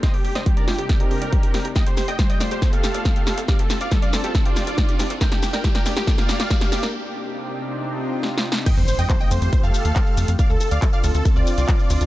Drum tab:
CC |------------------------------------------------|------------------------------------------------|------------------------------------------------|------------------------------------------------|
RD |------------------------------------------------|------------------------------------------------|------------------------------------------------|------------------------------------------------|
HH |x--o--o--x--x--x--o--x--x--x--o--x--x--x--o--x--|x--x--o--x--x--x--o--x--x--x--o--x--x--x--o--x--|x--x--o--x--x--x--o--x--x--x--o--x--x--x--o--x--|x--x--o--x--x--x--o--x--x--x--o--x--x--x--o--x--|
SH |------------------------------------------------|x--x--x--x--x--x--x--x--x--x--x--x--x--x--x--x--|x--x--x--x--x--x--x--x--x--x--x--x--x--x--x--x--|x--x--x--x--x--x--x--x--x--x--x--x--x--x--x--x--|
CP |------------------------------------------------|------------------------------------------------|------------------------------------------------|------------------------------------------------|
SD |o--------o--------o-----o-----------------o-----|o-----o-----o-----o-----o-----o-----o-----o-----|o-----o-----o-----o-----o-----o-----o-----o-----|o--o--o--o--o--o--o--o--o--o--o--o--o--o--o--o--|
BD |o-----------o-----------o-----------o-----------|o-----------o-----------o-----------o-----------|o-----------o-----------o-----------o-----------|o-----------o-----------o-----------o-----------|

CC |------------------------------------------------|x-----------------------------------------------|------------------------------------------------|
RD |------------------------------------------------|------x-----------x-----------x-----------x-----|------x-----------x-----------x-----------x-----|
HH |------------------------------------------------|x-----o--x--x-----o--x--x-----o--x--x-----o--x--|x-----o--x--x-----o--x--x-----o--x--x-----o--x--|
SH |------------------------------------------------|x--x--x--x--x--x--x--x--x--x--x--x--x--x--x--x--|x--x--x--x--x--x--x--x--x--x--x--x--x--x--x--x--|
CP |------------------------------------------------|------------x-----------------------x-----------|------------x-----------------------x-----------|
SD |------------------------------------o---o---o---|------------------------------------------------|------------------------------------------------|
BD |------------------------------------------------|o-----------o-----------o-----------o-----------|o-----------o-----------o-----------o-----------|